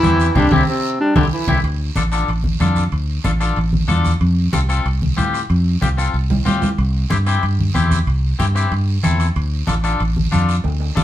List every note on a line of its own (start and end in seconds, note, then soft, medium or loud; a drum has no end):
0.00 0.29 E2 medium
0.00 0.39 E3 loud
0.00 0.26 C4 medium
0.00 0.39 E4 loud
0.00 0.26 E4 medium
0.00 0.26 G4 medium
0.00 high conga medium
0.00 short guiro medium
0.04 cowbell medium
0.04 low timbale medium
0.20 short guiro medium
0.35 0.48 C2 loud
0.35 0.54 G3 medium
0.35 0.46 C4 loud
0.35 0.55 D4 loud
0.35 0.46 E4 medium
0.35 0.46 G4 medium
0.35 high conga loud
0.35 high timbale medium
0.35 long guiro medium
0.51 0.64 C2 medium
0.51 0.67 C3 medium
0.51 0.62 C4 medium
0.51 0.68 C4 loud
0.51 0.62 E4 loud
0.51 0.62 G4 loud
0.51 high conga loud
0.51 high timbale medium
0.51 long guiro medium
0.68 0.98 C3 medium
0.68 0.98 C4 medium
1.01 1.15 G3 medium
1.01 1.15 D4 loud
1.16 1.28 C2 medium
1.16 1.24 D3 medium
1.16 1.26 C4 medium
1.16 1.23 D4 medium
1.16 1.26 E4 medium
1.16 1.26 G4 loud
1.16 high conga loud
1.16 high timbale loud
1.16 long guiro medium
1.33 1.55 E3 medium
1.33 1.55 E4 medium
1.48 1.60 C2 medium
1.48 1.58 C4 medium
1.48 1.58 E4 loud
1.48 1.58 G4 medium
1.48 high conga loud
1.48 high timbale loud
1.48 long guiro medium
1.64 1.89 D2 loud
1.64 high conga soft
1.64 high timbale medium
1.64 long guiro medium
1.96 2.22 A1 medium
1.96 2.02 D4 medium
1.96 2.02 F4 medium
1.96 2.02 A4 medium
1.96 high conga medium
1.96 high timbale medium
1.96 short guiro medium
2.12 2.29 D4 medium
2.12 2.29 F4 medium
2.12 2.29 A4 medium
2.12 high timbale medium
2.12 short guiro medium
2.28 2.54 A1 medium
2.28 high conga soft
2.28 high timbale medium
2.28 long guiro medium
2.44 high conga medium
2.60 2.86 F2 medium
2.60 2.83 D4 medium
2.60 2.83 F4 medium
2.60 2.83 A4 medium
2.60 high conga medium
2.60 high timbale medium
2.60 low timbale medium
2.60 short guiro medium
2.76 high conga medium
2.76 high timbale medium
2.76 short guiro medium
2.92 3.18 D2 loud
2.92 high conga soft
2.92 high timbale medium
2.92 long guiro medium
3.24 3.51 A1 medium
3.24 3.30 D4 medium
3.24 3.30 F4 medium
3.24 3.31 A4 medium
3.24 high conga medium
3.24 high timbale medium
3.24 short guiro medium
3.40 3.58 D4 medium
3.40 3.58 F4 medium
3.40 3.58 A4 medium
3.40 high timbale medium
3.40 short guiro medium
3.56 3.83 A1 medium
3.56 high conga soft
3.56 high timbale medium
3.56 long guiro medium
3.73 high conga medium
3.88 4.15 E2 medium
3.88 4.11 D4 medium
3.88 4.11 F4 medium
3.88 4.11 A4 loud
3.88 high conga medium
3.88 high timbale medium
3.88 low timbale medium
3.88 short guiro medium
4.04 high conga medium
4.04 high timbale medium
4.04 short guiro medium
4.21 4.47 F2 loud
4.21 high conga soft
4.21 high timbale medium
4.21 long guiro medium
4.53 4.79 C2 medium
4.53 4.59 C4 medium
4.53 4.59 F4 medium
4.53 4.59 A4 medium
4.53 high conga loud
4.53 high timbale medium
4.53 short guiro medium
4.69 4.86 C4 medium
4.69 4.86 F4 medium
4.69 4.87 A4 medium
4.69 high timbale medium
4.69 short guiro medium
4.85 5.11 C2 medium
4.85 high conga soft
4.85 high timbale medium
4.85 long guiro medium
5.02 high conga medium
5.17 5.43 A2 medium
5.17 5.40 C4 medium
5.17 5.40 F4 medium
5.17 5.40 G4 medium
5.17 high conga medium
5.17 high timbale medium
5.17 low timbale medium
5.17 short guiro medium
5.34 high timbale medium
5.34 short guiro medium
5.50 5.76 F2 loud
5.50 high conga soft
5.50 high timbale medium
5.50 long guiro medium
5.81 6.08 C2 medium
5.81 5.87 C4 medium
5.81 5.88 F4 medium
5.81 5.88 G4 medium
5.81 high conga medium
5.81 high timbale medium
5.81 short guiro medium
5.98 6.15 C4 medium
5.98 6.15 F4 medium
5.98 6.15 A4 medium
5.98 high timbale medium
5.98 short guiro medium
6.14 6.40 C2 medium
6.14 high conga soft
6.14 long guiro medium
6.30 high conga medium
6.30 low timbale medium
6.45 6.72 A2 medium
6.45 6.68 C4 medium
6.45 6.69 F4 medium
6.45 6.69 G4 medium
6.45 high conga medium
6.45 low timbale medium
6.45 short guiro medium
6.62 high conga medium
6.62 low timbale medium
6.62 short guiro medium
6.78 7.04 C2 loud
6.78 high conga soft
6.78 high timbale medium
6.78 long guiro medium
7.10 7.37 G2 medium
7.10 7.16 C4 medium
7.10 7.16 E4 medium
7.10 7.16 G4 medium
7.10 high conga medium
7.10 high timbale medium
7.10 short guiro medium
7.26 7.44 C4 medium
7.26 7.44 E4 medium
7.26 7.44 G4 medium
7.26 high timbale medium
7.26 short guiro medium
7.43 7.69 G2 medium
7.43 high conga soft
7.43 high timbale medium
7.43 long guiro medium
7.59 high conga medium
7.74 8.01 E2 medium
7.74 7.97 C4 medium
7.74 7.97 E4 medium
7.74 7.98 G4 medium
7.74 high conga medium
7.74 high timbale medium
7.74 short guiro medium
7.91 high conga medium
7.91 high timbale medium
7.91 short guiro medium
8.07 8.33 C2 loud
8.07 high conga soft
8.07 high timbale medium
8.07 long guiro medium
8.39 8.65 G2 medium
8.39 8.45 C4 medium
8.39 8.45 E4 medium
8.39 8.45 G4 medium
8.39 high conga medium
8.39 high timbale medium
8.39 short guiro medium
8.55 8.72 C4 medium
8.55 8.72 E4 medium
8.55 8.73 G4 medium
8.55 high timbale medium
8.55 short guiro medium
8.71 8.97 G2 medium
8.71 high conga soft
8.71 high timbale medium
8.71 long guiro medium
9.03 9.29 E2 medium
9.03 9.26 C4 medium
9.03 9.26 E4 medium
9.03 9.26 A4 medium
9.03 high conga medium
9.03 high timbale medium
9.03 short guiro medium
9.20 high timbale medium
9.20 short guiro medium
9.36 9.62 D2 loud
9.36 high conga soft
9.36 high timbale medium
9.36 long guiro medium
9.67 9.94 A1 medium
9.67 9.73 D4 medium
9.67 9.73 F4 medium
9.67 9.74 A4 medium
9.67 high conga medium
9.67 high timbale medium
9.67 short guiro medium
9.84 10.01 D4 medium
9.84 10.01 F4 medium
9.84 10.01 A4 medium
9.84 high timbale medium
9.84 short guiro medium
10.00 10.26 A1 medium
10.00 high conga soft
10.00 high timbale medium
10.00 long guiro medium
10.17 high conga medium
10.32 10.58 F2 medium
10.32 10.54 D4 medium
10.32 10.55 F4 medium
10.32 10.55 A4 medium
10.32 high conga medium
10.32 high timbale medium
10.32 short guiro medium
10.48 high timbale medium
10.48 short guiro medium
10.64 10.90 D2 loud
10.64 high conga soft
10.64 high timbale medium
10.64 long guiro medium
10.80 high timbale medium
10.95 11.04 A1 medium
10.95 11.02 D4 medium
10.95 11.02 F4 medium
10.95 11.02 A4 medium
10.95 high conga medium
10.95 short guiro medium